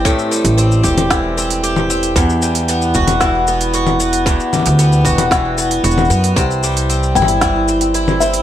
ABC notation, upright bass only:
X:1
M:4/4
L:1/16
Q:1/4=114
K:Em
V:1 name="Upright bass" clef=bass
z3 A,,,3 E,,,8- E,,,2 | E,,6 E,,,8- E,,,2- | E,,, z2 D,,3 E,,,6 E,,,2 F,,2 | C,,6 G,,,8- G,,,2 |]